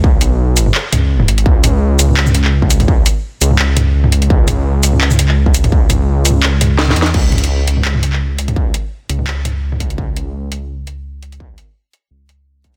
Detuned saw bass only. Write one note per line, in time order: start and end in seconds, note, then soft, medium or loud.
0.00 0.20 C#2 loud
0.21 0.73 B1 loud
0.93 1.27 C#2 loud
1.28 1.44 G#1 loud
1.46 1.98 C#2 loud
1.99 3.04 C#2 loud
3.41 3.93 C#2 loud
3.94 4.29 C#2 loud
4.30 4.82 C#2 loud
4.83 5.88 C#2 loud
5.90 6.95 C#2 loud
6.96 7.13 E2 loud
7.14 7.66 C#2 loud
7.67 8.73 C#2 medium
9.09 9.61 C#2 medium
9.62 9.97 C#2 medium
9.98 10.50 C#2 loud
10.51 11.56 C#2 medium
12.11 12.77 C#2 medium